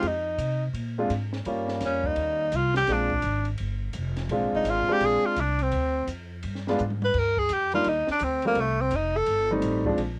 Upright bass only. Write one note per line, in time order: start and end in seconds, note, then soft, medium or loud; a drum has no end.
0.03 0.37 F2 medium
0.38 0.73 C3 medium
0.73 1.08 A#2 medium
1.10 1.44 G#2 medium
1.46 1.80 G2 medium
1.80 2.15 F2 medium
2.16 2.51 D#2 medium
2.52 2.87 C2 medium
2.88 3.22 A#1 medium
3.23 3.58 G#1 medium
3.60 3.94 G1 medium
3.95 4.28 F1 medium
4.29 4.43 A#1 medium
4.41 4.52 G#1 medium
4.52 4.63 F1 medium
4.63 4.86 G#1 medium
4.87 muted upright bass stroke soft
5.00 5.22 A#1 medium
5.23 muted upright bass stroke soft
5.37 5.71 C2 medium
5.72 6.07 D2 medium
6.07 6.42 F2 medium
6.44 6.78 G2 medium
6.80 7.13 G#2 medium
7.14 7.49 G2 medium
7.50 7.84 F2 medium
7.86 8.07 D#2 medium
8.08 muted upright bass stroke soft
8.21 8.55 D2 medium
8.56 8.91 C2 medium
8.91 9.26 F1 medium
9.27 9.62 G1 medium
9.63 9.97 A1 loud
9.97 10.20 A#1 medium